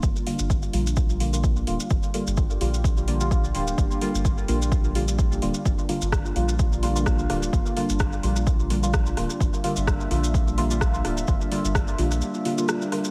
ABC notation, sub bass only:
X:1
M:4/4
L:1/16
Q:"Swing 16ths" 1/4=128
K:Gdor
V:1 name="Sub bass" clef=bass
G,,, z2 G,,,3 B,,,8 D,,, z | G,,, z2 G,,,3 B,,,8 D,,,2 | G,,, z2 G,,,3 B,,,8 D,,, z | G,,, z2 G,,,3 B,,,8 D,,,2 |
G,,, z2 G,,,3 B,,,8 D,,, z | G,,, z2 G,,,3 B,,,8 D,,,2 | G,,, z2 G,,,3 B,,,2 z8 |]